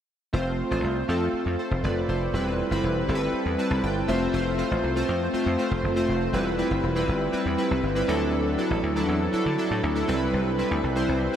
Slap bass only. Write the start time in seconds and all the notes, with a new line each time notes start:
0.33 F1
0.71 A1
0.84 C2
1.09 F2
1.33 muted slap bass stroke
1.46 F2
1.71 F1
1.83 F1
2.08 F1
2.33 E1
2.71 G1
2.83 E1
3.08 G1
3.33 muted slap bass stroke
3.46 E2
3.71 C2
3.83 G1
4.08 F1
4.33 F1
4.71 A1
4.84 C2
5.09 F2
5.34 muted slap bass stroke
5.46 F2
5.71 F1
5.84 F1
6.09 F1
6.33 E1
6.71 G1
6.83 E1
7.08 G1
7.33 muted slap bass stroke
7.46 E2
7.71 C2
7.83 G1
8.08 D2
8.71 A1
8.83 D2
9.08 E2
9.34 muted slap bass stroke
9.46 D3
9.71 A2
9.83 D2
10.09 C2
10.33 C2
10.71 D2
10.84 C2
11.09 C2